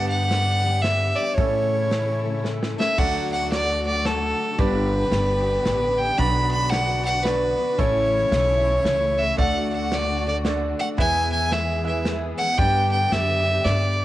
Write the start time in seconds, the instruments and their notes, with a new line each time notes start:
Already playing: steel-string acoustic guitar G2 D3 G3 B3 D4 G4, upright bass G2, string section D3 B3 G4, grand piano D4 G4 B4 D5
0.09 fiddle F#5
0.29 steel-string acoustic guitar G3 B3 D4 G4, snare, closed hi-hat
0.63 steel-string acoustic guitar G3 B3 D4 G4
0.82 steel-string acoustic guitar G3 B3 D4 G4, fiddle E5, snare, closed hi-hat
1.16 steel-string acoustic guitar G3 B3 D4 G4, fiddle D5
1.34 steel-string acoustic guitar A2 E3 A3 C#4 A4, upright bass A2, string section A3 E4, fiddle C#5, kick, closed hi-hat
1.38 string section C#3, grand piano C#4 E4 A4 C#5
1.89 steel-string acoustic guitar E3 A3 C#4 A4, snare, closed hi-hat
2.23 steel-string acoustic guitar A3 C#4 A4
2.43 steel-string acoustic guitar E3 A3 C#4 A4, snare
2.63 snare
2.77 steel-string acoustic guitar A3 C#4 A4, fiddle E5, snare
2.97 upright bass D2, steel-string acoustic guitar D3 F#3 A3 D4 F#4, string section D3 A3 F#4, grand piano D4 F#4 A4 D5, fiddle F#5, kick, crash
3.32 fiddle F#5
3.51 steel-string acoustic guitar F#3 A3 D4 F#4, fiddle D5, snare, closed hi-hat
3.87 fiddle D5
4.05 steel-string acoustic guitar F#3 A3 D4 F#4, fiddle A4, snare, closed hi-hat
4.58 upright bass G1, steel-string acoustic guitar G2 D3 G3 B3 D4 G4, string section B3 G4, grand piano D4 G4 B4 D5, fiddle B4, kick, closed hi-hat
5.10 upright bass G1, steel-string acoustic guitar G3 B3 D4 G4, snare, closed hi-hat
5.64 upright bass A1, steel-string acoustic guitar G3 B3 D4 G4, snare, closed hi-hat
5.98 fiddle G5
6.17 upright bass B1, steel-string acoustic guitar B2 F#3 B3 D4 F#4, grand piano D4 F#4 B4 D5, string section F#4, fiddle B5, kick, closed hi-hat
6.51 fiddle B5
6.70 steel-string acoustic guitar F#3 B3 D4 F#4, fiddle F#5, snare, closed hi-hat
7.05 fiddle F#5
7.23 steel-string acoustic guitar F#3 B3 D4 F#4, grand piano D4 F#4 B4 D5, fiddle B4, snare, closed hi-hat
7.58 steel-string acoustic guitar B3 D4 F#4
7.77 upright bass A1, steel-string acoustic guitar A2 E3 A3 C#4 E4, string section C#3 A3 E4, grand piano C#4 E4 A4 C#5, fiddle C#5, kick, closed hi-hat
8.31 upright bass B1, steel-string acoustic guitar E3 A3 C#4 E4, snare, closed hi-hat
8.84 upright bass C#2, steel-string acoustic guitar E3 A3 C#4 E4, snare, closed hi-hat
9.18 fiddle E5
9.37 upright bass D2, steel-string acoustic guitar D3 A3 D4 F#4, string section D3 F#4, grand piano D4 F#4 A4 D5, fiddle F#5, kick, closed hi-hat
9.74 fiddle F#5
9.90 steel-string acoustic guitar D3 A3 D4 F#4, snare, closed hi-hat
9.95 fiddle D5
10.25 steel-string acoustic guitar A3 D4 F#4, fiddle D5
10.44 steel-string acoustic guitar D3 A3 D4 F#4, grand piano D4 F#4 A4 D5, snare, closed hi-hat
10.79 steel-string acoustic guitar A3 D4 F#4, fiddle F#5
10.97 steel-string acoustic guitar E2 B2 E3 G#3 B3 G#4, upright bass E2, string section E3 B3 G#4, grand piano E4 G#4 B4 E5, fiddle G#5, kick, closed hi-hat
11.32 fiddle G#5
11.50 steel-string acoustic guitar E3 G#3 B3 G#4, fiddle E5, snare, closed hi-hat
11.84 grand piano E4 G#4 B4 E5, fiddle E5
12.05 steel-string acoustic guitar E3 G#3 B3 G#4, snare, closed hi-hat
12.38 steel-string acoustic guitar E3 G#3 B3 G#4, fiddle F#5
12.58 steel-string acoustic guitar G2 D3 G3 B3 D4 G4, upright bass G2, string section D3 G4, grand piano D4 G4 B4 D5, fiddle G5, kick, closed hi-hat
12.92 fiddle G5
13.11 upright bass F#2, steel-string acoustic guitar B3 D4 G4, fiddle E5, snare, closed hi-hat
13.65 upright bass G2, steel-string acoustic guitar G3 B3 D4 G4, fiddle D5, snare, closed hi-hat